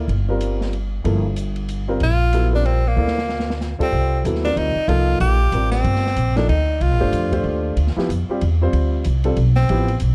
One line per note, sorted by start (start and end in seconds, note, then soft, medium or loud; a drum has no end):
0.08 1.00 G1 medium
0.08 ride soft
0.29 0.71 G3 medium
0.29 0.71 C4 soft
0.29 0.71 F4 soft
0.29 0.71 A#4 medium
0.41 hi-hat pedal medium
0.41 ride medium
0.61 snare soft
0.73 ride soft
1.04 1.97 G1 medium
1.04 1.22 F3 soft
1.04 1.22 A#3 soft
1.04 1.23 E4 soft
1.04 1.23 A4 medium
1.04 ride medium
1.36 hi-hat pedal medium
1.36 ride medium
1.56 ride soft
1.69 hi-hat pedal soft
1.69 ride medium
1.88 1.99 G3 medium
1.88 2.00 C4 medium
1.88 2.00 F4 medium
1.88 2.00 A#4 medium
2.00 2.93 A#1 medium
2.00 2.50 F4 loud
2.00 ride medium
2.33 2.51 F#3 medium
2.33 2.51 B3 medium
2.33 2.51 E4 soft
2.33 2.51 A4 medium
2.33 hi-hat pedal medium
2.33 ride medium
2.51 2.80 G3 soft
2.51 2.80 C4 soft
2.51 2.67 D4 medium
2.51 2.80 F4 soft
2.51 2.81 A#4 medium
2.65 2.89 C4 medium
2.65 ride soft
2.88 3.62 A#3 medium
2.96 3.76 D2 medium
2.96 3.14 A#3 medium
2.96 3.14 E4 soft
2.96 3.14 A4 soft
2.96 3.15 D5 soft
3.07 snare soft
3.18 snare medium
3.29 snare medium
3.40 snare medium
3.50 snare medium
3.61 snare soft
3.61 hi-hat pedal soft
3.79 4.21 G3 medium
3.79 4.22 C4 medium
3.79 4.23 C4 medium
3.79 4.22 F4 medium
3.79 4.22 A4 medium
3.79 muted upright bass stroke soft
3.79 kick medium
3.79 ride medium
3.92 4.23 C2 medium
4.24 4.55 D#2 medium
4.24 4.42 F#3 medium
4.24 4.43 B3 soft
4.24 4.43 E4 soft
4.24 4.43 A4 medium
4.24 hi-hat pedal medium
4.24 ride medium
4.35 snare soft
4.43 4.72 G3 soft
4.43 4.72 C4 soft
4.43 4.59 D4 medium
4.43 4.72 F4 soft
4.43 4.72 A#4 medium
4.43 snare soft
4.43 ride soft
4.56 4.74 D2 medium
4.56 4.90 D#4 medium
4.56 ride medium
4.75 muted upright bass stroke soft
4.88 5.19 C2 medium
4.88 5.36 F3 medium
4.88 5.36 A#3 medium
4.88 5.36 D#4 medium
4.88 5.20 F4 loud
4.88 5.36 A4 medium
4.88 ride medium
5.20 5.51 A#1 medium
5.20 5.68 G4 loud
5.20 ride medium
5.52 5.83 A1 medium
5.52 6.00 G3 soft
5.52 6.00 C4 soft
5.52 6.00 F4 soft
5.52 6.00 A#4 medium
5.52 hi-hat pedal soft
5.52 ride medium
5.71 6.38 C4 medium
5.71 snare soft
5.71 ride soft
5.84 6.15 G1 medium
5.84 ride medium
5.96 snare soft
6.06 snare soft
6.16 6.47 A#1 medium
6.16 hi-hat pedal medium
6.16 ride medium
6.36 6.47 F3 medium
6.36 6.47 A#3 medium
6.36 6.48 D4 medium
6.36 6.48 D#4 medium
6.36 6.48 A4 medium
6.36 snare medium
6.36 ride soft
6.49 6.80 D2 medium
6.49 6.83 D#4 medium
6.49 ride medium
6.80 6.91 C2 medium
6.80 7.45 F4 medium
6.80 ride medium
6.91 7.01 A#1 medium
7.00 7.11 G1 medium
7.00 7.30 A3 medium
7.00 7.30 D4 medium
7.00 7.30 G4 medium
7.00 7.30 C5 medium
7.12 7.43 F2 medium
7.12 hi-hat pedal medium
7.12 ride medium
7.31 7.74 A3 medium
7.31 7.74 D4 medium
7.31 7.74 G4 medium
7.31 7.75 C5 medium
7.31 kick soft
7.31 ride medium
7.44 7.75 D#2 medium
7.76 7.94 D2 medium
7.76 ride medium
7.87 snare soft
7.96 8.07 F3 medium
7.96 8.08 B3 medium
7.96 8.08 E4 medium
7.96 8.08 G4 medium
7.96 muted upright bass stroke soft
7.96 snare soft
8.09 8.27 F2 medium
8.09 hi-hat pedal medium
8.09 ride medium
8.29 8.40 G3 medium
8.29 8.40 C4 medium
8.29 8.40 F4 medium
8.29 8.41 G4 medium
8.29 muted upright bass stroke soft
8.41 8.72 E2 medium
8.41 ride medium
8.61 9.03 G3 medium
8.61 9.03 C4 medium
8.61 9.03 F4 medium
8.61 9.03 C5 medium
8.73 9.04 D2 medium
8.73 ride medium
9.04 9.36 C2 medium
9.04 hi-hat pedal medium
9.04 ride medium
9.24 9.35 G3 medium
9.24 9.36 C4 medium
9.24 9.36 F4 medium
9.24 9.36 A4 medium
9.24 ride soft
9.37 9.68 B1 medium
9.37 ride medium
9.56 9.97 C4 medium
9.56 snare soft
9.69 10.00 A1 medium
9.69 9.86 F3 medium
9.69 9.87 B3 medium
9.69 9.87 E4 medium
9.69 9.87 G4 medium
9.69 ride medium
9.88 ride soft
10.00 10.15 B1 medium
10.00 hi-hat pedal medium
10.00 ride medium